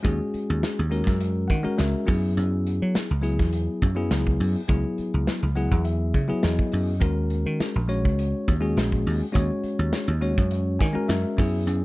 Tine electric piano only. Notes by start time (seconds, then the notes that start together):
0.03 G#3 C#4 F#4 G#4
0.90 G#3 C#4 F#4 A#4
1.48 F#5
1.63 G#3 C#4 F#4 A#4
1.78 E5
2.06 F#3 B3 E4 G#4
3.21 F#3 B3 E4 G#4
3.95 F#3 B3 E4 G#4
4.68 F#3 B3 E4 G#4
5.55 F#3 B3 E4 G#4 F#5
5.84 E5
6.28 F#3 B3 E4 G#4
6.43 D#5
7.00 G#3 C#4 F#4 A#4
7.88 G#3 C#4 F#4 C#5
8.61 G#3 C#4 F#4 G#4
9.32 G#3 C#4 F#4 C#5
10.21 G#3 C#4 F#4 C#5
10.79 G#5
10.93 G#3 C#4 F#4 A#4
11.08 E5
11.37 F#3 B3 E4 G#4